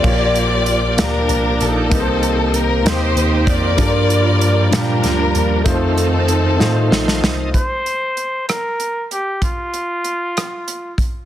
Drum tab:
CC |x-----------|------------|------------|------------|
HH |--x-x-x-x-x-|x-x-x-x-x-x-|x-x-x-x-x-x-|x-x-x-------|
SD |------o-----|------o-----|------o-o---|------o-ooo-|
BD |o-----------|o---------o-|o-----------|o-----------|

CC |------------|------------|
HH |x-x-x-x-x-x-|x-x-x-x-x-x-|
SD |------r-----|------r-----|
BD |o-----------|o---------o-|